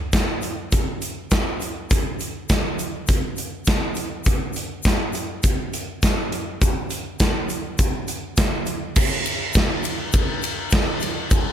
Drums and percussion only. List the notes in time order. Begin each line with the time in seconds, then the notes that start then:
0.13 kick, snare, closed hi-hat, shaker
0.42 closed hi-hat, shaker
0.71 kick, closed hi-hat, shaker
1.01 closed hi-hat, shaker
1.31 kick, snare, closed hi-hat, shaker
1.60 closed hi-hat, shaker
1.90 kick, closed hi-hat, shaker
2.19 closed hi-hat, shaker
2.49 kick, snare, closed hi-hat, shaker
2.79 closed hi-hat, shaker
3.07 kick, closed hi-hat, shaker
3.36 closed hi-hat, shaker
3.65 kick, snare, closed hi-hat, shaker
3.95 closed hi-hat, shaker
4.24 kick, closed hi-hat, shaker
4.53 closed hi-hat, shaker
4.83 kick, snare, closed hi-hat, shaker
5.13 closed hi-hat, shaker
5.43 kick, closed hi-hat, shaker
5.73 closed hi-hat, shaker
6.02 kick, snare, closed hi-hat, shaker
6.32 closed hi-hat
6.62 kick, closed hi-hat, shaker
6.90 closed hi-hat, shaker
7.20 kick, snare, closed hi-hat, shaker
7.49 closed hi-hat, shaker
7.78 kick, closed hi-hat, shaker
8.08 closed hi-hat, shaker
8.37 kick, snare, closed hi-hat, shaker
8.66 closed hi-hat, shaker
8.96 kick, crash, shaker
9.25 ride, shaker
9.53 kick, snare, ride, shaker
9.83 ride, shaker
10.12 kick, ride, shaker
10.42 ride, shaker
10.70 kick, snare, ride, shaker
11.00 snare, ride, shaker
11.30 kick, ride, shaker